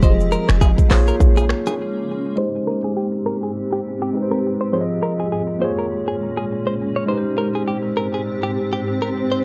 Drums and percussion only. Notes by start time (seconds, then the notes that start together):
0.02 kick, low conga, shaker
0.20 shaker
0.32 shaker
0.49 finger snap, cross-stick, shaker
0.61 kick, high bongo, shaker
0.78 kick, shaker
0.91 finger snap, cross-stick, clap, open hi-hat
1.07 shaker
1.20 kick, low bongo, low conga, shaker
1.37 high bongo, shaker
1.49 finger snap, cross-stick
1.67 low bongo, shaker